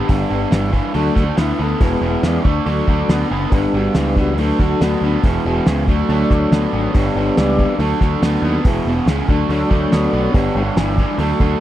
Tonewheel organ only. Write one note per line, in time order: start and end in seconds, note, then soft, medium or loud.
0.00 0.11 G4 medium
0.10 0.71 G3 medium
0.10 0.71 B3 soft
0.10 0.72 D4 medium
0.96 1.24 F#3 medium
0.96 1.24 A3 medium
0.96 1.39 D4 loud
1.42 1.61 E4 medium
1.63 1.82 A4 medium
1.80 2.42 G#3 medium
1.80 2.42 B3 soft
1.80 2.42 E4 medium
1.80 2.24 B4 medium
2.27 2.46 D5 medium
2.43 2.46 C#5 medium
2.47 3.30 D5 loud
2.66 3.27 F#3 medium
2.66 3.28 A3 medium
2.66 3.28 D4 medium
3.50 4.34 G3 medium
3.50 4.34 B3 medium
3.50 4.34 D4 medium
3.50 3.53 A#4 medium
3.54 3.74 B4 medium
3.76 3.96 F#4 medium
3.99 4.18 B4 medium
4.20 4.39 F#4 medium
4.36 5.20 F#3 medium
4.36 5.20 A3 soft
4.36 5.20 D4 medium
4.36 4.39 A#4 medium
4.41 4.61 B4 medium
4.61 4.81 F#4 medium
4.83 5.24 F#4 medium
5.24 5.85 G#3 medium
5.24 5.85 B3 soft
5.24 5.86 E4 medium
5.88 6.91 F#3 medium
5.88 6.91 A3 medium
5.88 6.92 D4 medium
6.11 6.24 C#5 medium
6.25 6.38 D5 loud
6.39 6.52 C#5 medium
6.53 6.67 C#5 medium
6.67 6.81 D5 medium
6.81 6.94 C#5 medium
6.93 7.75 G3 medium
6.93 7.75 B3 soft
6.93 7.76 D4 medium
6.93 7.10 C#5 medium
7.11 7.24 C#5 medium
7.26 7.38 C#5 loud
7.39 7.79 D5 loud
7.80 8.61 F#3 medium
7.80 8.61 A3 medium
7.80 8.62 D4 medium
8.65 8.93 G#3 medium
8.65 8.94 B3 medium
8.65 8.94 E4 medium
9.29 10.31 F#3 medium
9.29 10.31 A3 medium
9.29 10.31 D4 medium
9.52 9.65 C#5 loud
9.67 9.79 D5 medium
9.80 9.93 C#5 loud
9.95 10.07 C#5 loud
10.09 10.22 D5 medium
10.23 10.36 C#5 loud
10.34 10.63 G3 medium
10.34 10.63 B3 soft
10.34 10.63 D4 medium
10.34 10.50 C#5 loud
10.51 10.63 C#5 medium
10.64 10.77 C#5 medium
10.79 11.19 D5 loud
11.19 11.60 F#3 medium
11.19 11.60 A3 medium
11.19 11.60 D4 medium